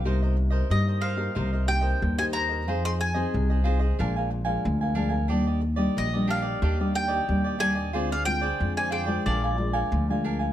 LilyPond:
<<
  \new Staff \with { instrumentName = "Mandolin" } { \time 4/4 \key c \minor \tempo 4 = 91 r4 ees''8 f''4 g''8. aes''16 bes''8~ | bes''16 c'''16 aes''2 r4. | r4 ees''8 f''4 g''4 aes''8~ | aes''16 f''16 g''8. aes''16 g''8 d''4. r8 | }
  \new Staff \with { instrumentName = "Cavaquinho" } { \time 4/4 \key c \minor <ees' bes' c'' ees''>16 <bes' c'' ees''>16 r16 <bes' c'' ees''>8 <bes' c'' ees''>16 <ees' bes' c'' ees''>16 <bes' c'' ees''>16 <ees' bes' c'' ees''>16 <bes' c'' ees''>16 r16 <bes' c'' ees''>8 <bes' c'' ees''>16 <ees' bes' c'' ees''>16 <bes' c'' ees''>16 | <f' aes' c'' ees''>16 <aes' c'' ees''>16 r16 <aes' c'' ees''>8 <aes' c'' ees''>16 <f' aes' c'' ees''>16 <aes' c'' ees''>16 <d' bes' f'' aes''>16 <bes' f'' aes''>16 r16 <bes' f'' aes''>8 <bes' f'' aes''>16 <d' bes' f'' aes''>16 <bes' f'' aes''>16 | <d' g' d'' ees''>16 <g' d'' ees''>16 r16 <g' d'' ees''>8 <g' d'' ees''>16 <d' g' d'' ees''>16 <g' d'' ees''>16 <d' g' d'' ees''>16 <g' d'' ees''>16 r16 <g' d'' ees''>8 <g' d'' ees''>16 <d' g' d'' ees''>16 <g' d'' ees''>16 | <f' aes' c'' d''>16 <aes' c'' d''>16 r16 <aes' c'' d''>8 <aes' c'' d''>16 <f' aes' c'' d''>16 <aes' c'' d''>16 <d' bes' f'' aes''>16 <bes' f'' aes''>16 r16 <bes' f'' aes''>8 <bes' f'' aes''>16 <d' bes' f'' aes''>16 <bes' f'' aes''>16 | }
  \new Staff \with { instrumentName = "Nylon-string guitar" } { \time 4/4 \key c \minor << { <bes ees' g'>4 <bes ees' g'>8. <bes ees' g'>16 <bes ees' g'>16 r16 <bes ees' g'>8. <bes ees' g'>8. | <c' ees' aes'>8. <c' ees' aes'>8. <c' ees' aes'>16 r16 <f aes d'>8. <f aes d'>8. <f aes d'>16 r16 | <g bes d'>8 r16 <g bes d'>8 <g bes d'>4 <g bes d'>8. <g bes d'>8 <g bes d'>8 | <aes c' f'>16 r16 <aes c' f'>16 r16 <aes c' f'>8. <aes d' f'>8. <aes d' f'>8. <aes d' f'>8. | } \\ { c4 g,4 c4 g,4 | f4 c4 bes,4 f,4 | ees4 bes,4 ees4 bes,4 | d4 d4 bes,4 f4 | } >> }
  \new Staff \with { instrumentName = "Upright bass" } { \clef bass \time 4/4 \key c \minor c,4 g,4 c,4 ees,4 | f,4 c,4 bes,,4 d,4 | ees,4 bes,,4 ees,4 ees,4 | d,4 f,4 bes,,4 d,4 | }
>>